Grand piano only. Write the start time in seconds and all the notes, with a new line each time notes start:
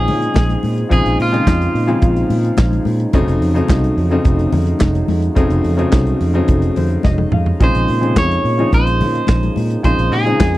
Already playing: C#3 F3 G#3 C4 C#4 D#4 F4
0.89 C#3 F3 G#3 C4 D#4
1.31 C#3 F3 G#3 C4 D#4
1.87 C#3 F3 G#3 C4 F4
3.14 C#3 F#3 A3 C4 D#4
3.54 C#3 F#3 A3 C4 D#4
4.10 C#3 F#3 A3 C4 D#4
5.35 C#3 F#3 A3 C4 D#4
5.77 C#3 F#3 A3 C4 D#4
6.34 C#3 F#3 A3 C4 D#4
6.77 C5
7.04 D#5
7.33 F5
7.60 C#3 F3 G#3 C4 D#4
8.01 C3 F3 G#3 C4 D#4
8.07 C#3
8.58 C#3 F3 G#3 C4 D#4
9.83 C#3 F3 G#3 C4 D#4
10.25 C#3 F3 G#3 C4 D#4